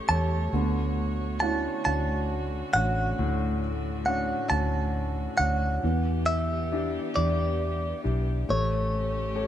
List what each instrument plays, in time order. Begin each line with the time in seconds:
Already playing: grand piano A3 G4 A4 C#5, felt piano A3, string section A3 G4 C#5
0.09 fingered electric bass E2, grand piano G4 A4 C#5, clean electric guitar A5
0.53 fingered electric bass D2, string section D3 F#4, grand piano D3, felt piano B3
1.40 grand piano C#4 D4 F#4, felt piano E4, clean electric guitar A5
1.85 fingered electric bass D2, grand piano C#4 D4 F#4, clean electric guitar A5
2.73 fingered electric bass A1, grand piano C#4 D4 F#4, clean electric guitar F#5
3.19 fingered electric bass D2, grand piano A2
4.06 grand piano C#4 D4 F#4, clean electric guitar F#5
4.50 fingered electric bass D2, grand piano C#4 D4 F#4, clean electric guitar A5
5.38 fingered electric bass D2, grand piano C#4 D4 F#4, clean electric guitar F#5
5.83 fingered electric bass E2, grand piano E3, string section E3 B3 G4, felt piano B3
6.26 clean electric guitar E5
6.72 grand piano D4 E4 G4
7.15 fingered electric bass E2, grand piano D4 E4 G4, clean electric guitar D5
8.04 fingered electric bass B1, grand piano D4 E4 G4
8.48 fingered electric bass A1, string section A3 C#4 G4, grand piano A3, clean electric guitar C#5
9.35 grand piano G4 A4 C#5